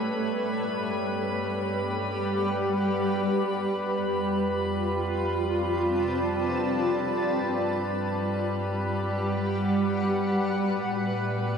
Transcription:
0, 0, Header, 1, 5, 480
1, 0, Start_track
1, 0, Tempo, 500000
1, 11116, End_track
2, 0, Start_track
2, 0, Title_t, "Synth texture"
2, 0, Program_c, 0, 99
2, 0, Note_on_c, 0, 71, 71
2, 0, Note_on_c, 0, 83, 73
2, 11116, Note_off_c, 0, 71, 0
2, 11116, Note_off_c, 0, 83, 0
2, 11116, End_track
3, 0, Start_track
3, 0, Title_t, "Ambient pad"
3, 0, Program_c, 1, 92
3, 0, Note_on_c, 1, 57, 72
3, 0, Note_on_c, 1, 69, 83
3, 0, Note_on_c, 1, 71, 68
3, 0, Note_on_c, 1, 73, 80
3, 99, Note_off_c, 1, 57, 0
3, 102, Note_on_c, 1, 55, 69
3, 394, Note_on_c, 1, 67, 85
3, 1399, Note_off_c, 1, 73, 0
3, 1405, Note_off_c, 1, 69, 0
3, 1562, Note_on_c, 1, 78, 81
3, 3351, Note_on_c, 1, 65, 81
3, 3357, Note_off_c, 1, 78, 0
3, 3359, Note_off_c, 1, 71, 0
3, 3360, Note_off_c, 1, 55, 0
3, 4411, Note_on_c, 1, 60, 76
3, 4646, Note_off_c, 1, 67, 0
3, 4807, Note_on_c, 1, 81, 89
3, 4812, Note_on_c, 1, 74, 68
3, 6602, Note_on_c, 1, 55, 69
3, 6615, Note_off_c, 1, 65, 0
3, 6620, Note_off_c, 1, 60, 0
3, 7374, Note_on_c, 1, 67, 84
3, 7913, Note_off_c, 1, 81, 0
3, 7916, Note_off_c, 1, 74, 0
3, 8085, Note_on_c, 1, 71, 74
3, 8086, Note_on_c, 1, 78, 70
3, 9870, Note_off_c, 1, 55, 0
3, 9880, Note_on_c, 1, 57, 78
3, 10792, Note_on_c, 1, 69, 89
3, 11116, Note_off_c, 1, 57, 0
3, 11116, Note_off_c, 1, 67, 0
3, 11116, Note_off_c, 1, 69, 0
3, 11116, Note_off_c, 1, 71, 0
3, 11116, Note_off_c, 1, 78, 0
3, 11116, End_track
4, 0, Start_track
4, 0, Title_t, "Harmonium"
4, 0, Program_c, 2, 20
4, 0, Note_on_c, 2, 55, 59
4, 11116, Note_off_c, 2, 55, 0
4, 11116, End_track
5, 0, Start_track
5, 0, Title_t, "Synth drone"
5, 0, Program_c, 3, 95
5, 98, Note_on_c, 3, 43, 74
5, 3304, Note_off_c, 3, 43, 0
5, 3353, Note_on_c, 3, 41, 76
5, 6562, Note_off_c, 3, 41, 0
5, 6608, Note_on_c, 3, 43, 84
5, 9819, Note_off_c, 3, 43, 0
5, 9873, Note_on_c, 3, 45, 82
5, 11116, Note_off_c, 3, 45, 0
5, 11116, End_track
0, 0, End_of_file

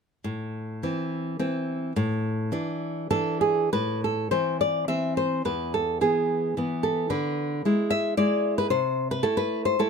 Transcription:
0, 0, Header, 1, 2, 480
1, 0, Start_track
1, 0, Key_signature, 0, "minor"
1, 0, Tempo, 594059
1, 193, Time_signature, 3, 2, 24, 8
1, 672, Tempo, 560748
1, 2112, Tempo, 605449
1, 3072, Tempo, 575816
1, 4512, Tempo, 545455
1, 8423, End_track
2, 0, Start_track
2, 0, Title_t, "Nylon-string guitar"
2, 0, Program_c, 0, 24
2, 197, Note_on_c, 0, 45, 45
2, 660, Note_off_c, 0, 45, 0
2, 673, Note_on_c, 0, 52, 39
2, 674, Note_on_c, 0, 60, 42
2, 1144, Note_off_c, 0, 60, 0
2, 1148, Note_off_c, 0, 52, 0
2, 1154, Note_on_c, 0, 60, 47
2, 1158, Note_on_c, 0, 52, 45
2, 1601, Note_off_c, 0, 60, 0
2, 1603, Note_off_c, 0, 52, 0
2, 1641, Note_on_c, 0, 45, 61
2, 2099, Note_off_c, 0, 45, 0
2, 2116, Note_on_c, 0, 52, 44
2, 2122, Note_on_c, 0, 62, 51
2, 2572, Note_off_c, 0, 52, 0
2, 2572, Note_off_c, 0, 62, 0
2, 2581, Note_on_c, 0, 52, 47
2, 2581, Note_on_c, 0, 69, 71
2, 2582, Note_on_c, 0, 62, 51
2, 2817, Note_off_c, 0, 69, 0
2, 2822, Note_on_c, 0, 68, 53
2, 3042, Note_off_c, 0, 62, 0
2, 3043, Note_off_c, 0, 52, 0
2, 3060, Note_off_c, 0, 68, 0
2, 3074, Note_on_c, 0, 71, 66
2, 3078, Note_on_c, 0, 45, 44
2, 3307, Note_off_c, 0, 71, 0
2, 3336, Note_on_c, 0, 69, 46
2, 3545, Note_off_c, 0, 45, 0
2, 3557, Note_off_c, 0, 69, 0
2, 3561, Note_on_c, 0, 72, 60
2, 3566, Note_on_c, 0, 52, 38
2, 3573, Note_on_c, 0, 60, 35
2, 3790, Note_off_c, 0, 72, 0
2, 3807, Note_on_c, 0, 74, 59
2, 4029, Note_off_c, 0, 52, 0
2, 4030, Note_off_c, 0, 60, 0
2, 4032, Note_off_c, 0, 74, 0
2, 4035, Note_on_c, 0, 76, 71
2, 4038, Note_on_c, 0, 52, 34
2, 4041, Note_on_c, 0, 60, 41
2, 4266, Note_off_c, 0, 76, 0
2, 4278, Note_on_c, 0, 72, 60
2, 4479, Note_off_c, 0, 52, 0
2, 4479, Note_off_c, 0, 60, 0
2, 4503, Note_off_c, 0, 72, 0
2, 4510, Note_on_c, 0, 40, 41
2, 4514, Note_on_c, 0, 71, 58
2, 4747, Note_off_c, 0, 71, 0
2, 4765, Note_on_c, 0, 69, 53
2, 4982, Note_off_c, 0, 40, 0
2, 4993, Note_off_c, 0, 69, 0
2, 5003, Note_on_c, 0, 52, 36
2, 5006, Note_on_c, 0, 68, 54
2, 5013, Note_on_c, 0, 59, 38
2, 5471, Note_off_c, 0, 68, 0
2, 5486, Note_off_c, 0, 52, 0
2, 5494, Note_off_c, 0, 59, 0
2, 5496, Note_on_c, 0, 52, 41
2, 5505, Note_on_c, 0, 59, 39
2, 5726, Note_on_c, 0, 69, 58
2, 5941, Note_off_c, 0, 52, 0
2, 5945, Note_off_c, 0, 59, 0
2, 5960, Note_off_c, 0, 69, 0
2, 5961, Note_on_c, 0, 50, 47
2, 5964, Note_on_c, 0, 71, 50
2, 6430, Note_off_c, 0, 50, 0
2, 6449, Note_on_c, 0, 56, 36
2, 6455, Note_on_c, 0, 64, 43
2, 6648, Note_off_c, 0, 71, 0
2, 6670, Note_on_c, 0, 76, 73
2, 6900, Note_off_c, 0, 56, 0
2, 6901, Note_off_c, 0, 76, 0
2, 6902, Note_off_c, 0, 64, 0
2, 6907, Note_on_c, 0, 74, 76
2, 6910, Note_on_c, 0, 56, 42
2, 6915, Note_on_c, 0, 64, 41
2, 7251, Note_off_c, 0, 74, 0
2, 7265, Note_on_c, 0, 71, 63
2, 7348, Note_off_c, 0, 56, 0
2, 7349, Note_off_c, 0, 64, 0
2, 7369, Note_off_c, 0, 71, 0
2, 7372, Note_on_c, 0, 72, 64
2, 7378, Note_on_c, 0, 48, 50
2, 7717, Note_off_c, 0, 72, 0
2, 7732, Note_on_c, 0, 71, 63
2, 7836, Note_on_c, 0, 69, 71
2, 7838, Note_on_c, 0, 57, 45
2, 7841, Note_off_c, 0, 48, 0
2, 7843, Note_on_c, 0, 64, 46
2, 7856, Note_off_c, 0, 71, 0
2, 7960, Note_on_c, 0, 71, 69
2, 7970, Note_off_c, 0, 69, 0
2, 8205, Note_off_c, 0, 71, 0
2, 8209, Note_on_c, 0, 72, 65
2, 8321, Note_off_c, 0, 57, 0
2, 8329, Note_off_c, 0, 64, 0
2, 8331, Note_on_c, 0, 57, 41
2, 8335, Note_on_c, 0, 69, 64
2, 8339, Note_on_c, 0, 64, 48
2, 8341, Note_off_c, 0, 72, 0
2, 8423, Note_off_c, 0, 57, 0
2, 8423, Note_off_c, 0, 64, 0
2, 8423, Note_off_c, 0, 69, 0
2, 8423, End_track
0, 0, End_of_file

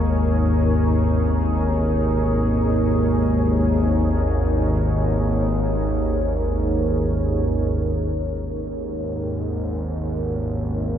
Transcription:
0, 0, Header, 1, 3, 480
1, 0, Start_track
1, 0, Tempo, 500000
1, 10541, End_track
2, 0, Start_track
2, 0, Title_t, "Ambient pad"
2, 0, Program_c, 0, 92
2, 0, Note_on_c, 0, 63, 67
2, 0, Note_on_c, 0, 68, 68
2, 0, Note_on_c, 0, 70, 68
2, 0, Note_on_c, 0, 73, 75
2, 10541, Note_off_c, 0, 63, 0
2, 10541, Note_off_c, 0, 68, 0
2, 10541, Note_off_c, 0, 70, 0
2, 10541, Note_off_c, 0, 73, 0
2, 10541, End_track
3, 0, Start_track
3, 0, Title_t, "Synth drone"
3, 0, Program_c, 1, 95
3, 0, Note_on_c, 1, 32, 72
3, 0, Note_on_c, 1, 39, 74
3, 7760, Note_off_c, 1, 32, 0
3, 7760, Note_off_c, 1, 39, 0
3, 7772, Note_on_c, 1, 32, 64
3, 7772, Note_on_c, 1, 39, 69
3, 10541, Note_off_c, 1, 32, 0
3, 10541, Note_off_c, 1, 39, 0
3, 10541, End_track
0, 0, End_of_file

